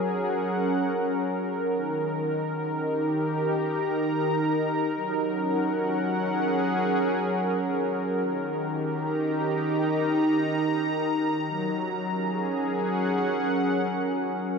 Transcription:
Already playing: F#3 C#4 G#4 A#4 F#5
1.75 D#3
2.15 D#4
2.82 G4
3.16 A#5
4.97 F#3
5.29 C#4
5.40 F#5
6.30 G#4
8.23 D#3
8.61 G4
8.90 D#4 A#5
11.48 F#3
12.01 C#4
12.18 G#4
12.79 F#5

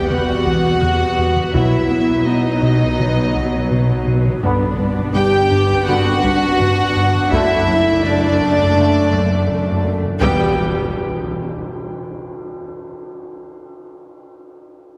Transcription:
Already playing: E1 E2 G3 B3 G4 E5 E6, sub drop
0.09 E2 G3 B3 F#4 F#5, taiko mid
0.45 E3, taiko
0.81 E2 F#6, taiko mid
1.18 E2
1.36 taiko mid
1.54 B1 B2 F#3 B3 E4 E5, taiko
1.91 B3
2.26 B3 D#4 D#5
2.62 B2
2.81 taiko
2.98 B2 F#3 B3, taiko mid
3.35 B3, taiko
3.71 B2, taiko mid
4.07 B2
4.25 taiko mid
4.43 G1 G2 D3 B3 D4, taiko
4.79 G3
5.15 G3 G4 G5
5.51 G2
5.70 taiko
5.87 G2 D3 B3 F#4 F#5, taiko mid
6.23 G3 B6, taiko
6.60 G2, taiko mid
6.96 G2
7.14 taiko mid
7.31 F#1 F#2 D3 A3 E4 E5, taiko
7.68 F#3
8.04 F#3 D4 D5
8.41 F#2
8.59 taiko
8.76 F#2 D3 A3, taiko mid
9.12 F#3, taiko
9.49 F#2, taiko mid
9.86 F#2
10.03 taiko mid
10.21 E1 E2 G3 B3 G4 G5, taiko, tam-tam, impact

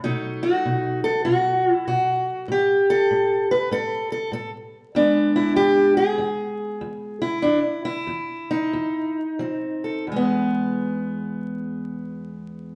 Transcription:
0.04 B2 F#3 A3 D#4
0.43 F#4
0.65 B2
1.04 A4
1.25 B2 F#4
1.73 E4
1.87 B2 F#4
2.48 A2 G4
2.90 A4
3.11 A2
3.51 B4
3.71 A2 A4
4.12 A4
4.32 A2 A4
4.95 E2 G#3 B3 D4
5.36 E4
5.56 E2 G4
5.97 G#4
6.18 E2
6.81 E2
7.22 E4
7.42 E2 D4
7.85 E4
8.07 E2
8.51 D#4
8.73 E2
9.39 F3 C4
9.84 A4
10.07 E2
10.12 G#3
10.16 B3

